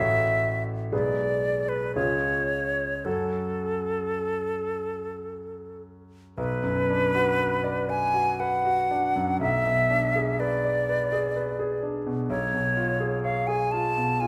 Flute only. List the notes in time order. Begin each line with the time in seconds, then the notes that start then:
Already playing: E5
0.92 D5
1.69 B4
1.95 C#5
3.05 A4
6.38 B4
7.89 G#5
8.40 F#5
9.41 E5
10.40 D5
12.30 C#5
13.23 F5
13.47 G#5
13.71 A5
14.20 G#5